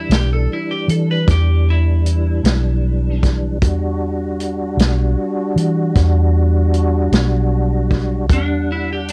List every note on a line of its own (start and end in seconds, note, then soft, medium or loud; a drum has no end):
0.00 3.58 E3 medium
0.00 3.58 G3 medium
0.00 3.58 D4 medium
0.00 0.12 E4 medium
0.09 0.46 B1 medium
0.09 0.31 G4 medium
0.09 snare loud
0.09 closed hi-hat medium
0.33 0.50 A4 medium
0.53 0.70 E4 medium
0.71 0.89 G4 medium
0.88 1.24 E3 medium
0.88 1.08 A4 medium
0.88 closed hi-hat medium
1.11 1.28 B4 medium
1.27 2.41 E2 medium
1.27 1.67 G4 medium
1.27 kick medium
1.27 snare soft
1.27 closed hi-hat medium
1.70 3.21 E4 medium
2.06 closed hi-hat medium
2.44 3.62 B1 medium
2.44 snare loud
2.44 closed hi-hat medium
3.23 kick medium
3.23 snare soft
3.23 closed hi-hat medium
3.62 4.75 E2 medium
3.62 8.26 G3 medium
3.62 8.26 D4 medium
3.62 8.26 F#4 medium
3.62 kick loud
3.62 closed hi-hat medium
4.40 closed hi-hat medium
4.77 5.14 B1 medium
4.77 snare loud
4.77 closed hi-hat medium
5.56 5.92 E3 medium
5.56 closed hi-hat medium
5.96 7.09 E2 medium
5.96 kick loud
5.96 snare soft
5.96 closed hi-hat medium
6.74 closed hi-hat medium
7.12 8.30 B1 medium
7.12 snare loud
7.12 closed hi-hat medium
7.91 kick medium
7.91 snare soft
7.91 closed hi-hat medium
8.30 9.12 E2 medium
8.30 9.12 G3 medium
8.30 9.12 D4 medium
8.30 8.69 D4 medium
8.30 9.12 F#5 medium
8.30 kick medium
8.30 closed hi-hat medium
8.72 8.90 E4 medium
8.93 9.10 G4 medium
9.08 closed hi-hat medium